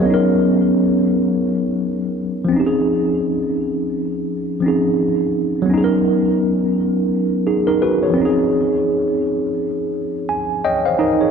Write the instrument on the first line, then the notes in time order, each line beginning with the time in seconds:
tine electric piano
Already playing: G#4 C#5
0.00 F#3 B3
0.06 C#4
0.10 D#4 A#4
2.45 F3 C4
2.52 C#4
2.56 D#4 G4
2.67 G#4
4.60 F3 C4 C#4
4.66 D#4 G#4
5.62 F#3 B3
5.70 C#4 D#4
5.78 G#4
5.84 A#4
7.47 D#4 G#4
7.67 D#4 A#4
7.82 F#4 B4
8.03 G#4 C#5
8.10 F3 C4
8.18 C#4 D#4
8.25 G#4
10.29 G#5
10.64 C#5 D#5 G5
10.86 C5 F5
10.99 D#4 A#4 D#5
11.21 G#4 C#5